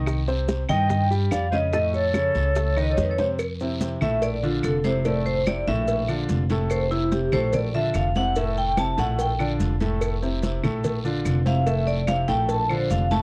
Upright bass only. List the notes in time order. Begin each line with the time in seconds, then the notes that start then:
Already playing: C2
0.69 G2
1.32 F2
2.36 C#2
2.98 F2
4.01 A#1
4.63 F1
5.67 A#1
6.29 F1
7.33 A#1
7.95 F1
8.98 A#1
9.60 F1
10.64 A#1
11.25 F1
12.29 A#1
12.91 F1